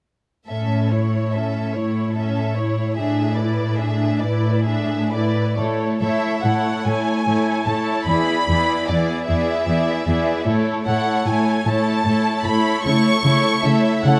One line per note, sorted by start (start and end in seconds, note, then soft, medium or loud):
0.47 1.61 A2 soft
0.47 0.89 C#4 soft
0.47 0.88 A4 soft
0.47 0.88 E5 soft
0.90 1.34 E4 soft
0.90 1.34 C#5 soft
1.33 1.76 C#4 soft
1.33 1.75 A4 soft
1.33 1.75 E5 soft
1.72 2.82 A2 soft
1.72 2.14 C#5 soft
1.72 2.16 C#5 soft
1.77 2.17 E4 soft
2.12 2.51 A4 soft
2.16 2.54 C#4 soft
2.16 2.54 E5 soft
2.54 2.95 C#5 soft
2.54 2.97 C#5 soft
2.58 2.97 E4 soft
2.95 4.06 A2 soft
2.95 3.35 D4 soft
2.95 3.33 G#4 soft
2.95 3.33 E5 soft
3.35 3.79 E4 soft
3.35 3.77 B4 soft
3.35 3.77 D5 soft
3.74 4.19 G#4 soft
3.74 4.20 E5 soft
3.79 4.21 D4 soft
4.20 5.43 A2 soft
4.20 4.66 E4 soft
4.20 4.65 B4 soft
4.20 4.65 D5 soft
4.63 5.08 G#4 soft
4.63 5.08 E5 soft
4.67 5.10 D4 soft
5.10 5.57 B4 soft
5.10 5.58 D5 soft
5.15 5.58 E4 soft
5.58 5.66 A2 soft
5.58 6.01 A3 soft
5.58 6.01 E4 soft
5.58 5.99 A4 soft
5.58 6.00 C#5 soft
6.00 6.09 A2 soft
6.00 6.44 A3 soft
6.00 6.44 E4 soft
6.00 6.43 A4 soft
6.00 6.43 C#5 soft
6.00 6.41 E5 soft
6.44 6.53 A2 soft
6.44 6.86 A3 soft
6.44 6.87 E4 soft
6.44 6.85 A4 soft
6.44 6.85 C#5 soft
6.44 6.86 F#5 soft
6.86 6.94 A2 soft
6.86 7.27 A3 soft
6.86 7.27 E4 soft
6.86 7.26 A4 soft
6.86 7.26 C#5 soft
6.86 7.67 G#5 soft
7.27 7.35 A2 soft
7.27 7.67 A3 soft
7.27 7.67 E4 soft
7.27 7.66 A4 soft
7.27 7.67 C#5 soft
7.66 7.74 A2 soft
7.66 8.07 A3 soft
7.66 8.07 E4 soft
7.66 8.07 A4 soft
7.66 8.07 C#5 soft
7.66 8.07 A5 soft
8.06 8.15 E2 soft
8.06 8.48 B3 soft
8.06 8.48 E4 soft
8.06 8.47 G#4 soft
8.06 8.47 D5 soft
8.06 8.86 B5 medium
8.48 8.56 E2 soft
8.48 8.88 B3 soft
8.48 8.88 E4 soft
8.48 8.88 G#4 soft
8.48 8.88 D5 soft
8.87 8.97 E2 soft
8.87 9.27 B3 soft
8.87 9.27 E4 soft
8.87 9.27 G#4 soft
8.87 9.27 D5 soft
8.87 9.26 D5 soft
9.26 9.37 E2 soft
9.26 9.67 B3 soft
9.26 9.67 E4 soft
9.26 9.65 G#4 soft
9.26 9.66 D5 soft
9.26 10.43 E5 soft
9.67 9.75 E2 soft
9.67 10.07 B3 soft
9.67 10.07 E4 soft
9.67 10.04 G#4 soft
9.67 10.05 D5 soft
10.05 10.16 E2 soft
10.05 10.47 B3 soft
10.05 10.46 E4 soft
10.05 10.45 G#4 soft
10.05 10.46 D5 soft
10.47 10.55 A2 soft
10.47 10.85 A3 soft
10.47 10.86 E4 soft
10.47 10.85 A4 soft
10.47 10.85 C#5 soft
10.86 10.95 A2 soft
10.86 11.25 A3 soft
10.86 11.26 E4 soft
10.86 11.26 A4 soft
10.86 11.26 C#5 soft
10.86 11.24 F#5 soft
11.26 11.34 A2 soft
11.26 11.65 A3 soft
11.26 11.65 E4 soft
11.26 11.67 A4 soft
11.26 11.67 C#5 soft
11.26 11.66 G#5 soft
11.66 11.74 A2 soft
11.66 12.05 A3 soft
11.66 12.05 E4 soft
11.66 12.06 A4 soft
11.66 12.06 C#5 soft
11.66 12.45 A5 medium
12.05 12.13 A2 soft
12.05 12.45 A3 soft
12.05 12.45 E4 soft
12.05 12.45 A4 soft
12.05 12.45 C#5 soft
12.44 12.52 A2 soft
12.44 12.84 A3 soft
12.44 12.83 E4 soft
12.44 12.85 A4 soft
12.44 12.85 C#5 soft
12.44 12.85 B5 medium
12.84 12.93 C#3 soft
12.84 13.23 A3 soft
12.84 13.23 E4 soft
12.84 13.23 A4 soft
12.84 13.23 C#5 soft
12.84 13.63 C#6 medium
13.24 13.32 C#3 soft
13.24 13.63 A3 soft
13.24 13.63 E4 soft
13.24 13.61 A4 soft
13.24 13.61 C#5 soft
13.62 13.72 C#3 soft
13.62 14.04 A3 soft
13.62 14.04 E4 soft
13.62 14.03 A4 soft
13.62 14.03 C#5 soft
13.62 14.04 E5 medium
14.04 14.12 C#3 soft
14.04 14.20 A3 soft
14.04 14.20 E4 soft
14.04 14.20 A4 soft
14.04 14.20 C#5 soft
14.04 14.20 F#5 medium